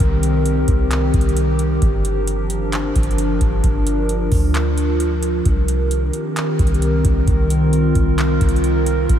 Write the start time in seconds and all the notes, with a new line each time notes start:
Already playing: D#3 C4 G4 A#4, downlifter
0.00 C2, kick, closed hi-hat
0.23 closed hi-hat
0.46 closed hi-hat
0.68 C2, kick, closed hi-hat
0.91 clap, closed hi-hat
1.14 C2, kick, closed hi-hat
1.21 closed hi-hat
1.29 closed hi-hat
1.37 closed hi-hat
1.59 closed hi-hat
1.82 G1 F3 D4 A#4, kick, closed hi-hat
2.05 closed hi-hat
2.27 closed hi-hat
2.50 closed hi-hat
2.73 clap, closed hi-hat
2.96 G1, kick, closed hi-hat
3.03 closed hi-hat
3.11 closed hi-hat
3.18 closed hi-hat
3.41 G1, kick, closed hi-hat
3.64 G1 F4, kick, closed hi-hat
3.87 closed hi-hat
4.09 closed hi-hat
4.32 D2, kick, open hi-hat
4.55 clap, closed hi-hat
4.78 closed hi-hat
5.00 closed hi-hat
5.23 closed hi-hat
5.45 C2 D#3 C4 G4, kick, closed hi-hat
5.68 closed hi-hat
5.91 closed hi-hat
6.13 closed hi-hat
6.36 clap, closed hi-hat
6.59 C2, kick, closed hi-hat
6.67 closed hi-hat
6.74 closed hi-hat
6.82 closed hi-hat
7.05 C2, kick, closed hi-hat
7.28 C2 F4, kick, closed hi-hat
7.50 closed hi-hat
7.73 closed hi-hat
7.95 C2, kick, closed hi-hat
8.18 clap, closed hi-hat
8.41 C2, kick, closed hi-hat
8.49 closed hi-hat
8.56 closed hi-hat
8.64 closed hi-hat
8.86 closed hi-hat
9.09 G1 F3 D4 G4, kick, closed hi-hat